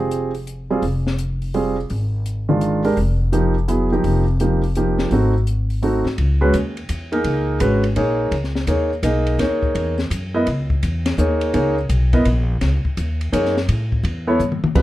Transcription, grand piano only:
0.00 0.30 C4 medium
0.00 0.30 F4 medium
0.00 0.30 G4 medium
0.00 0.30 G#4 medium
0.70 0.82 G3 medium
0.70 0.82 C4 medium
0.70 0.82 F4 medium
0.70 0.82 G#4 medium
1.54 1.75 G3 medium
1.54 1.76 C4 medium
1.54 1.76 F4 soft
1.54 1.76 G#4 medium
2.49 2.82 D#3 medium
2.49 2.82 G#3 medium
2.49 2.82 D4 medium
2.49 2.82 F4 medium
2.84 2.96 G#3 medium
2.84 2.96 D4 medium
2.84 2.96 G4 medium
2.84 2.96 A#4 medium
3.32 3.54 F3 medium
3.32 3.54 A#3 medium
3.32 3.54 D#4 medium
3.32 3.54 G4 medium
3.68 3.89 F#3 medium
3.68 3.89 B3 soft
3.68 3.89 E4 soft
3.68 3.89 G#4 medium
3.92 4.23 F3 medium
3.92 4.23 A#3 soft
3.92 4.23 D#4 soft
3.92 4.23 G4 medium
4.40 4.61 F3 soft
4.40 4.61 A#3 soft
4.40 4.61 D#4 soft
4.40 4.61 G4 medium
4.77 5.12 F3 soft
4.77 5.12 A#3 soft
4.77 5.11 D#4 soft
4.77 5.12 G4 medium
5.12 5.33 A3 medium
5.12 5.33 C4 medium
5.12 5.33 D#4 medium
5.12 5.33 F#4 medium
5.82 6.03 A3 medium
5.82 6.04 C4 soft
5.82 6.04 D#4 soft
5.82 6.04 F#4 medium
6.41 6.52 G#3 medium
6.41 6.52 C#4 medium
6.41 6.52 F#4 medium
6.41 6.52 B4 medium
7.12 7.58 A#3 medium
7.12 7.58 D#4 medium
7.12 7.58 G#4 medium
7.12 7.58 A#4 medium
7.60 7.82 G#3 medium
7.60 7.82 C#4 medium
7.60 7.82 F#4 medium
7.60 7.82 B4 medium
7.96 8.32 A#3 medium
7.96 8.32 D#4 medium
7.96 8.32 G#4 medium
7.96 8.32 C#5 medium
8.68 8.89 A#3 medium
8.68 8.89 D#4 soft
8.68 8.89 G#4 soft
8.68 8.89 C#5 medium
9.03 9.38 A#3 medium
9.03 9.38 D#4 soft
9.03 9.38 G#4 medium
9.03 9.58 D#5 medium
9.39 9.94 A#3 medium
9.39 9.94 D#4 medium
9.39 9.94 G#4 soft
9.39 9.94 C#5 medium
10.34 10.45 B3 medium
10.34 10.45 E4 medium
10.34 10.46 A#4 medium
10.34 10.45 D#5 medium
11.18 11.52 A#3 medium
11.18 11.52 D#4 medium
11.18 11.52 G#4 medium
11.18 11.52 C#5 medium
11.54 11.75 A#3 medium
11.54 11.75 D#4 medium
11.54 11.75 G#4 medium
11.54 11.75 C#5 medium
12.13 12.24 B3 medium
12.13 12.24 E4 medium
12.13 12.24 A#4 medium
12.13 12.25 D#5 medium
13.32 13.54 A#3 medium
13.32 13.54 D#4 medium
13.32 13.54 G#4 medium
13.32 13.54 C#5 medium
14.27 14.38 B3 medium
14.27 14.38 E4 medium
14.27 14.39 A4 medium
14.27 14.39 C#5 medium
14.75 14.82 G3 medium
14.75 14.82 C4 soft
14.75 14.82 F4 medium
14.75 14.82 B4 medium

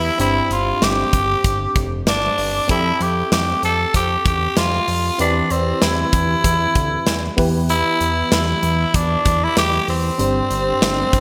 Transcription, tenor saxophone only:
0.00 0.16 E4 loud
0.21 0.53 E4 medium
0.52 0.85 F4 medium
0.83 1.81 G4 loud
2.08 2.66 D4 medium
2.71 3.03 E4 loud
3.02 3.32 G4 medium
3.32 3.61 G4 medium
3.65 3.93 A4 medium
3.96 4.24 G4 loud
4.27 4.56 G4 medium
4.58 5.16 F4 medium
5.21 5.53 D4 medium
5.52 5.84 C4 medium
5.83 7.39 E4 medium
7.70 8.28 E4 loud
8.33 8.97 E4 medium
8.96 9.45 D4 medium
9.44 9.57 E4 medium
9.58 9.87 G4 loud
9.90 11.20 C4 medium

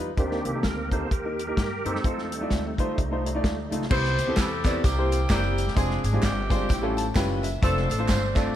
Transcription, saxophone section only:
3.91 4.37 E4 medium
3.91 4.80 G4 medium
3.91 4.34 C5 loud
4.37 4.81 E4 medium
4.37 4.84 A4 loud
4.84 5.30 A#3 medium
4.84 5.30 E4 medium
4.84 5.29 G4 loud
5.30 5.74 A#3 medium
5.30 5.74 E4 medium
5.30 5.74 G4 loud
5.77 6.23 C4 medium
5.77 6.23 D4 medium
5.77 6.04 G#4 loud
6.05 6.22 G#4 loud
6.24 6.93 C4 medium
6.24 6.93 D4 medium
6.24 6.97 G4 medium
7.63 8.52 C4 medium
7.63 8.52 D4 medium
7.63 7.88 A4 loud
7.90 8.08 A4 medium
8.09 8.34 C5 loud
8.37 8.55 D5 loud

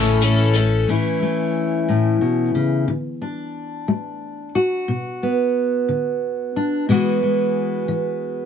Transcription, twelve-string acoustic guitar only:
0.00 0.22 A2 medium
0.00 0.19 E3 medium
0.00 0.21 A3 medium
0.00 0.21 C#4 medium
0.00 0.21 A4 medium
0.21 0.54 E3 medium
0.21 0.55 A3 medium
0.21 0.54 C#4 medium
0.21 0.52 A4 medium
0.54 0.89 A3 soft
0.54 0.88 C#4 soft
0.54 0.87 A4 medium

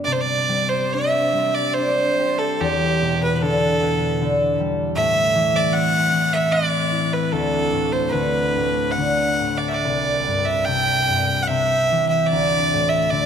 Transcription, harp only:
0.00 0.12 G2 soft
0.00 0.12 D3 soft
0.00 0.12 G3 soft
0.00 0.37 A3 soft
0.00 0.13 B3 soft
0.00 0.94 D4 soft
0.07 2.65 C3 medium
0.49 1.32 G3 soft
0.94 1.77 D4 soft
1.33 2.65 G3 soft
1.78 4.58 D4 medium
2.19 4.55 G4 medium
2.60 5.03 E2 medium
3.01 3.47 B2 soft
3.43 3.87 D3 medium
3.81 4.26 B2 medium
4.21 5.03 D3 medium
4.60 5.03 G3 medium
4.96 7.37 A2 medium
5.35 6.12 E3 medium
5.74 6.51 C4 medium
6.13 7.37 E3 soft
6.51 9.51 C4 medium
6.92 9.53 E4 medium
7.33 8.12 D2 medium
7.73 8.18 A2 soft
8.13 9.88 D2 medium
8.56 9.02 A2 soft
8.97 9.44 D3 soft
9.40 9.88 A2 soft
9.85 12.38 C2 medium
10.27 10.73 G2 soft
10.68 11.14 C3 medium
11.08 11.56 G2 soft
11.50 12.38 C3 medium
11.91 12.38 E3 soft
12.32 13.26 D2 medium
12.73 13.18 A2 medium
13.12 13.26 D3 medium

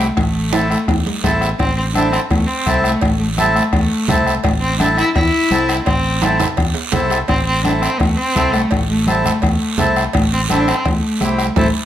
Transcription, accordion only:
0.52 0.78 C4 medium
0.52 0.78 E4 medium
0.52 0.78 A4 medium
1.24 1.49 C4 medium
1.24 1.49 E4 medium
1.24 1.49 A4 medium
1.95 2.20 C4 medium
1.95 2.20 E4 medium
1.95 2.20 A4 medium
2.66 2.91 C4 medium
2.66 2.91 E4 medium
2.66 2.92 A4 medium
3.38 3.63 C4 medium
3.38 3.63 E4 medium
3.38 3.63 A4 medium
4.09 4.34 C4 medium
4.09 4.34 E4 medium
4.09 4.34 A4 medium
4.79 5.05 C4 medium
4.79 5.05 E4 medium
4.79 5.05 A4 medium
5.51 5.76 C4 medium
5.51 5.76 E4 medium
5.51 5.76 A4 medium
6.22 6.47 C4 medium
6.22 6.48 E4 medium
6.22 6.48 A4 medium
6.93 7.18 C4 medium
6.93 7.18 E4 medium
6.93 7.19 A4 loud
7.65 7.90 C4 medium
7.65 7.90 E4 medium
7.65 7.90 A4 medium
8.35 8.61 C4 medium
8.35 8.61 E4 medium
8.35 8.61 A4 medium
9.07 9.32 C4 medium
9.07 9.32 E4 medium
9.07 9.32 A4 medium
9.78 10.03 C4 medium
9.78 10.03 E4 medium
9.78 10.04 A4 medium
10.49 10.75 C4 medium
10.49 10.75 E4 medium
10.49 10.75 A4 medium
11.21 11.46 C4 medium
11.21 11.46 E4 medium
11.21 11.46 G4 medium
11.57 11.68 C4 loud
11.57 11.68 E4 loud
11.57 11.68 A4 loud

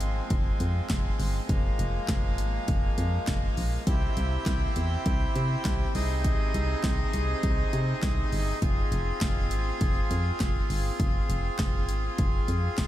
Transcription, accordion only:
0.00 3.83 F3 medium
0.00 3.83 G#3 medium
0.00 1.47 C4 medium
1.49 3.85 A#3 medium
3.87 8.58 C3 medium
3.87 8.58 C4 medium
3.87 5.93 E4 medium
3.87 5.93 G4 medium
3.87 5.93 G5 medium
5.95 8.60 D#4 medium
5.95 8.60 G#4 medium
5.95 8.60 D#5 medium
8.62 12.87 C4 medium
8.62 12.87 F4 medium
8.62 12.87 G#4 medium

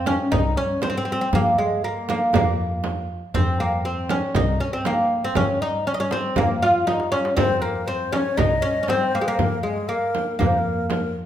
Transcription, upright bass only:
0.00 0.16 F2 medium
0.32 0.53 C2 medium
1.33 1.54 F3 medium
2.34 3.18 F2 medium
3.35 4.19 F2 medium
4.35 4.56 C2 medium
5.36 5.57 F3 medium
6.36 7.21 F2 medium
7.37 8.22 F2 medium
8.38 8.59 C2 medium
9.39 9.60 F3 medium
10.40 11.24 F2 medium

